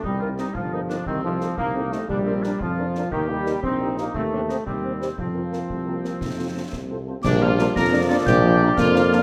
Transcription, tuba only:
\new Staff \with { instrumentName = "Tuba" } { \clef bass \time 6/8 \key bes \major \tempo 4. = 116 c,4. g,,4. | c,4. c,4. | bes,,4. f,4. | ees,4. bes,,4. |
ees,4. ees,4. | f,4. c,4. | f,4. c,4. | bes,,4. f,4. |
bes,,4. f,4. | }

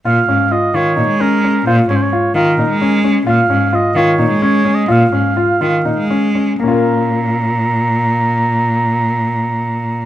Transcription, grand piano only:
\new Staff \with { instrumentName = "Grand piano" } { \time 7/8 \key bes \minor \tempo 4 = 127 f'8 des'8 f'8 f'8 ees'8 des'8 des'8 | f'8 des'8 f'8 f'8 ees'8 des'8 des'8 | f'8 des'8 f'8 f'8 ees'8 des'8 des'8 | f'8 des'8 f'8 f'8 ees'8 des'8 des'8 |
<bes des' f' bes'>2.~ <bes des' f' bes'>8~ | <bes des' f' bes'>2.~ <bes des' f' bes'>8 | }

